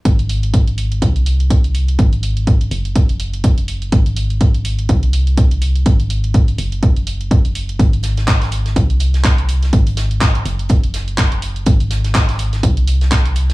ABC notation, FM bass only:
X:1
M:4/4
L:1/8
Q:"Swing 16ths" 1/4=124
K:Cphr
V:1 name="FM bass" clef=bass
A,,,4 C,,4 | A,,,3 _G,,,4- G,,, | A,,,4 C,,4 | A,,,3 _G,,,4- G,,, |
A,,,4 C,,4 | A,,,3 _G,,,4- G,,, | A,,,4 C,,4 |]